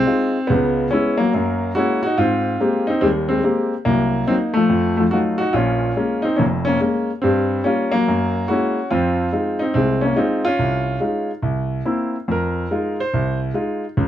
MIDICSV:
0, 0, Header, 1, 2, 480
1, 0, Start_track
1, 0, Key_signature, -4, "minor"
1, 0, Tempo, 421053
1, 565, Time_signature, 4, 2, 24, 8
1, 16050, End_track
2, 0, Start_track
2, 0, Title_t, "Grand piano"
2, 0, Program_c, 0, 0
2, 0, Note_on_c, 0, 60, 98
2, 75, Note_on_c, 0, 56, 45
2, 79, Note_on_c, 0, 63, 44
2, 83, Note_on_c, 0, 65, 49
2, 410, Note_off_c, 0, 56, 0
2, 412, Note_off_c, 0, 63, 0
2, 414, Note_off_c, 0, 65, 0
2, 538, Note_on_c, 0, 59, 79
2, 567, Note_on_c, 0, 56, 61
2, 571, Note_on_c, 0, 37, 61
2, 573, Note_on_c, 0, 49, 60
2, 578, Note_off_c, 0, 60, 0
2, 983, Note_off_c, 0, 37, 0
2, 984, Note_off_c, 0, 49, 0
2, 1011, Note_off_c, 0, 56, 0
2, 1028, Note_off_c, 0, 59, 0
2, 1033, Note_on_c, 0, 61, 82
2, 1045, Note_on_c, 0, 59, 48
2, 1058, Note_on_c, 0, 64, 54
2, 1065, Note_on_c, 0, 56, 62
2, 1329, Note_off_c, 0, 61, 0
2, 1340, Note_on_c, 0, 58, 79
2, 1347, Note_off_c, 0, 56, 0
2, 1373, Note_on_c, 0, 54, 63
2, 1374, Note_off_c, 0, 59, 0
2, 1381, Note_off_c, 0, 64, 0
2, 1509, Note_off_c, 0, 58, 0
2, 1527, Note_on_c, 0, 58, 59
2, 1531, Note_on_c, 0, 42, 63
2, 1939, Note_off_c, 0, 58, 0
2, 1942, Note_off_c, 0, 42, 0
2, 1965, Note_off_c, 0, 54, 0
2, 1994, Note_on_c, 0, 66, 83
2, 2008, Note_on_c, 0, 56, 48
2, 2011, Note_on_c, 0, 64, 45
2, 2012, Note_on_c, 0, 58, 46
2, 2021, Note_on_c, 0, 61, 67
2, 2294, Note_off_c, 0, 66, 0
2, 2303, Note_off_c, 0, 61, 0
2, 2311, Note_on_c, 0, 66, 88
2, 2334, Note_off_c, 0, 56, 0
2, 2336, Note_off_c, 0, 64, 0
2, 2337, Note_off_c, 0, 58, 0
2, 2352, Note_on_c, 0, 63, 67
2, 2467, Note_off_c, 0, 66, 0
2, 2481, Note_on_c, 0, 65, 81
2, 2484, Note_on_c, 0, 44, 60
2, 2489, Note_off_c, 0, 63, 0
2, 2516, Note_on_c, 0, 60, 65
2, 2897, Note_off_c, 0, 44, 0
2, 2956, Note_off_c, 0, 60, 0
2, 2968, Note_on_c, 0, 56, 50
2, 2969, Note_on_c, 0, 58, 46
2, 2973, Note_on_c, 0, 60, 46
2, 2980, Note_on_c, 0, 67, 53
2, 3272, Note_on_c, 0, 63, 79
2, 3288, Note_off_c, 0, 60, 0
2, 3294, Note_off_c, 0, 56, 0
2, 3294, Note_off_c, 0, 58, 0
2, 3297, Note_off_c, 0, 65, 0
2, 3300, Note_off_c, 0, 67, 0
2, 3305, Note_on_c, 0, 60, 62
2, 3415, Note_off_c, 0, 60, 0
2, 3432, Note_on_c, 0, 60, 76
2, 3438, Note_on_c, 0, 55, 59
2, 3440, Note_on_c, 0, 39, 57
2, 3443, Note_off_c, 0, 63, 0
2, 3459, Note_on_c, 0, 56, 61
2, 3503, Note_off_c, 0, 60, 0
2, 3527, Note_off_c, 0, 56, 0
2, 3746, Note_on_c, 0, 60, 82
2, 3779, Note_on_c, 0, 56, 59
2, 3853, Note_off_c, 0, 55, 0
2, 3854, Note_off_c, 0, 39, 0
2, 3901, Note_off_c, 0, 56, 0
2, 3908, Note_off_c, 0, 60, 0
2, 3918, Note_on_c, 0, 56, 48
2, 3923, Note_on_c, 0, 58, 43
2, 3926, Note_on_c, 0, 60, 43
2, 3927, Note_on_c, 0, 67, 51
2, 4248, Note_off_c, 0, 56, 0
2, 4251, Note_off_c, 0, 58, 0
2, 4252, Note_off_c, 0, 60, 0
2, 4253, Note_off_c, 0, 67, 0
2, 4390, Note_on_c, 0, 58, 80
2, 4397, Note_on_c, 0, 36, 62
2, 4426, Note_on_c, 0, 54, 57
2, 4812, Note_off_c, 0, 36, 0
2, 4839, Note_off_c, 0, 58, 0
2, 4858, Note_off_c, 0, 54, 0
2, 4871, Note_on_c, 0, 58, 47
2, 4873, Note_on_c, 0, 60, 78
2, 4878, Note_on_c, 0, 63, 55
2, 4905, Note_on_c, 0, 54, 60
2, 4944, Note_off_c, 0, 60, 0
2, 4972, Note_off_c, 0, 54, 0
2, 5171, Note_on_c, 0, 57, 76
2, 5204, Note_off_c, 0, 58, 0
2, 5207, Note_off_c, 0, 63, 0
2, 5211, Note_on_c, 0, 53, 58
2, 5353, Note_on_c, 0, 41, 55
2, 5647, Note_off_c, 0, 53, 0
2, 5648, Note_off_c, 0, 57, 0
2, 5665, Note_on_c, 0, 57, 66
2, 5701, Note_on_c, 0, 53, 54
2, 5722, Note_off_c, 0, 57, 0
2, 5758, Note_off_c, 0, 53, 0
2, 5769, Note_off_c, 0, 41, 0
2, 5825, Note_on_c, 0, 66, 79
2, 5842, Note_on_c, 0, 54, 48
2, 5842, Note_on_c, 0, 57, 42
2, 5845, Note_on_c, 0, 63, 44
2, 5851, Note_on_c, 0, 65, 51
2, 5897, Note_off_c, 0, 66, 0
2, 6132, Note_on_c, 0, 66, 85
2, 6145, Note_off_c, 0, 63, 0
2, 6162, Note_on_c, 0, 63, 66
2, 6169, Note_off_c, 0, 54, 0
2, 6169, Note_off_c, 0, 57, 0
2, 6173, Note_off_c, 0, 65, 0
2, 6294, Note_off_c, 0, 66, 0
2, 6304, Note_on_c, 0, 65, 79
2, 6310, Note_off_c, 0, 63, 0
2, 6313, Note_on_c, 0, 34, 60
2, 6316, Note_on_c, 0, 46, 58
2, 6332, Note_on_c, 0, 61, 64
2, 6729, Note_off_c, 0, 34, 0
2, 6730, Note_off_c, 0, 46, 0
2, 6791, Note_off_c, 0, 61, 0
2, 6801, Note_on_c, 0, 56, 46
2, 6803, Note_on_c, 0, 58, 42
2, 6808, Note_on_c, 0, 61, 55
2, 7093, Note_on_c, 0, 63, 80
2, 7119, Note_on_c, 0, 60, 58
2, 7126, Note_off_c, 0, 65, 0
2, 7128, Note_off_c, 0, 56, 0
2, 7129, Note_off_c, 0, 58, 0
2, 7131, Note_off_c, 0, 61, 0
2, 7252, Note_on_c, 0, 61, 72
2, 7254, Note_off_c, 0, 63, 0
2, 7268, Note_off_c, 0, 60, 0
2, 7285, Note_on_c, 0, 41, 58
2, 7287, Note_on_c, 0, 29, 58
2, 7291, Note_on_c, 0, 58, 59
2, 7325, Note_off_c, 0, 61, 0
2, 7359, Note_off_c, 0, 58, 0
2, 7578, Note_on_c, 0, 61, 90
2, 7609, Note_on_c, 0, 58, 63
2, 7695, Note_off_c, 0, 41, 0
2, 7696, Note_off_c, 0, 29, 0
2, 7743, Note_off_c, 0, 58, 0
2, 7751, Note_off_c, 0, 61, 0
2, 7760, Note_on_c, 0, 58, 44
2, 7761, Note_on_c, 0, 56, 45
2, 7768, Note_on_c, 0, 61, 53
2, 8087, Note_off_c, 0, 56, 0
2, 8087, Note_off_c, 0, 58, 0
2, 8091, Note_off_c, 0, 61, 0
2, 8226, Note_on_c, 0, 60, 74
2, 8250, Note_on_c, 0, 43, 63
2, 8250, Note_on_c, 0, 55, 64
2, 8657, Note_off_c, 0, 43, 0
2, 8676, Note_off_c, 0, 60, 0
2, 8688, Note_off_c, 0, 55, 0
2, 8711, Note_on_c, 0, 61, 75
2, 8723, Note_on_c, 0, 55, 50
2, 8729, Note_on_c, 0, 58, 47
2, 8734, Note_on_c, 0, 65, 53
2, 9006, Note_off_c, 0, 58, 0
2, 9023, Note_on_c, 0, 58, 91
2, 9035, Note_off_c, 0, 61, 0
2, 9048, Note_off_c, 0, 55, 0
2, 9054, Note_off_c, 0, 65, 0
2, 9054, Note_on_c, 0, 54, 57
2, 9210, Note_on_c, 0, 42, 59
2, 9618, Note_off_c, 0, 42, 0
2, 9642, Note_off_c, 0, 54, 0
2, 9668, Note_on_c, 0, 66, 75
2, 9669, Note_off_c, 0, 58, 0
2, 9683, Note_on_c, 0, 56, 47
2, 9686, Note_on_c, 0, 58, 46
2, 9687, Note_on_c, 0, 64, 43
2, 9702, Note_on_c, 0, 61, 59
2, 10008, Note_off_c, 0, 56, 0
2, 10010, Note_off_c, 0, 58, 0
2, 10010, Note_off_c, 0, 64, 0
2, 10117, Note_off_c, 0, 66, 0
2, 10135, Note_off_c, 0, 61, 0
2, 10152, Note_on_c, 0, 65, 81
2, 10160, Note_on_c, 0, 41, 65
2, 10161, Note_on_c, 0, 53, 63
2, 10174, Note_on_c, 0, 60, 65
2, 10572, Note_off_c, 0, 41, 0
2, 10573, Note_off_c, 0, 53, 0
2, 10622, Note_off_c, 0, 65, 0
2, 10631, Note_on_c, 0, 56, 52
2, 10634, Note_on_c, 0, 63, 47
2, 10639, Note_on_c, 0, 65, 56
2, 10912, Note_off_c, 0, 60, 0
2, 10919, Note_off_c, 0, 63, 0
2, 10936, Note_on_c, 0, 63, 77
2, 10963, Note_off_c, 0, 56, 0
2, 10967, Note_off_c, 0, 65, 0
2, 10967, Note_on_c, 0, 60, 59
2, 11086, Note_off_c, 0, 60, 0
2, 11103, Note_on_c, 0, 60, 75
2, 11113, Note_off_c, 0, 63, 0
2, 11115, Note_on_c, 0, 36, 60
2, 11138, Note_on_c, 0, 56, 58
2, 11415, Note_on_c, 0, 61, 73
2, 11419, Note_off_c, 0, 56, 0
2, 11432, Note_off_c, 0, 60, 0
2, 11452, Note_on_c, 0, 58, 56
2, 11530, Note_off_c, 0, 36, 0
2, 11581, Note_on_c, 0, 56, 50
2, 11588, Note_on_c, 0, 63, 76
2, 11592, Note_off_c, 0, 61, 0
2, 11593, Note_on_c, 0, 65, 55
2, 11595, Note_off_c, 0, 58, 0
2, 11610, Note_on_c, 0, 60, 58
2, 11891, Note_off_c, 0, 65, 0
2, 11895, Note_off_c, 0, 60, 0
2, 11909, Note_on_c, 0, 65, 92
2, 11914, Note_off_c, 0, 63, 0
2, 11918, Note_off_c, 0, 56, 0
2, 11938, Note_on_c, 0, 61, 63
2, 12073, Note_on_c, 0, 36, 61
2, 12490, Note_off_c, 0, 36, 0
2, 12535, Note_off_c, 0, 65, 0
2, 12546, Note_on_c, 0, 56, 49
2, 12550, Note_on_c, 0, 63, 44
2, 12552, Note_on_c, 0, 65, 52
2, 12838, Note_off_c, 0, 61, 0
2, 12881, Note_off_c, 0, 56, 0
2, 12883, Note_off_c, 0, 63, 0
2, 12884, Note_off_c, 0, 65, 0
2, 13025, Note_on_c, 0, 36, 59
2, 13446, Note_off_c, 0, 36, 0
2, 13514, Note_on_c, 0, 58, 47
2, 13516, Note_on_c, 0, 60, 44
2, 13522, Note_on_c, 0, 64, 53
2, 13846, Note_off_c, 0, 58, 0
2, 13847, Note_off_c, 0, 60, 0
2, 13850, Note_off_c, 0, 64, 0
2, 14001, Note_on_c, 0, 41, 61
2, 14039, Note_on_c, 0, 70, 63
2, 14416, Note_off_c, 0, 41, 0
2, 14490, Note_on_c, 0, 56, 52
2, 14493, Note_on_c, 0, 63, 46
2, 14499, Note_on_c, 0, 65, 54
2, 14768, Note_off_c, 0, 70, 0
2, 14815, Note_off_c, 0, 56, 0
2, 14817, Note_off_c, 0, 63, 0
2, 14820, Note_off_c, 0, 65, 0
2, 14824, Note_on_c, 0, 72, 78
2, 14975, Note_on_c, 0, 36, 61
2, 15257, Note_off_c, 0, 72, 0
2, 15384, Note_off_c, 0, 36, 0
2, 15438, Note_on_c, 0, 56, 49
2, 15439, Note_on_c, 0, 63, 45
2, 15447, Note_on_c, 0, 65, 53
2, 15770, Note_off_c, 0, 56, 0
2, 15771, Note_off_c, 0, 63, 0
2, 15775, Note_off_c, 0, 65, 0
2, 15928, Note_on_c, 0, 37, 60
2, 15932, Note_on_c, 0, 49, 61
2, 16050, Note_off_c, 0, 37, 0
2, 16050, Note_off_c, 0, 49, 0
2, 16050, End_track
0, 0, End_of_file